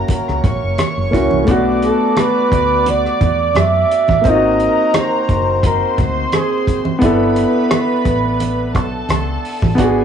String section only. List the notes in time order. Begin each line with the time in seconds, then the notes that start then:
Already playing: A#4 A#5
0.43 C#5 C#6
1.48 D5 D6
4.25 A#4 A#5
5.63 C5 C6
7.02 B4 B5
8.74 A4 A5
9.78 G#4 G#5